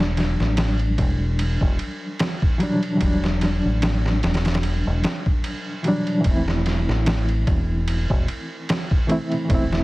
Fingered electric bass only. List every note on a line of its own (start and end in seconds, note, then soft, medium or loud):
0.00 0.35 E1 medium
0.40 0.95 A1 medium
0.98 1.57 E1 loud
1.61 1.77 E1 medium
3.01 3.60 E1 loud
3.65 4.20 A1 medium
4.24 4.82 E1 loud
4.87 5.02 E1 medium
6.26 6.84 E1 loud
6.89 7.44 A1 medium
7.47 8.06 E1 loud
8.10 8.26 E1 medium
9.50 9.84 E1 loud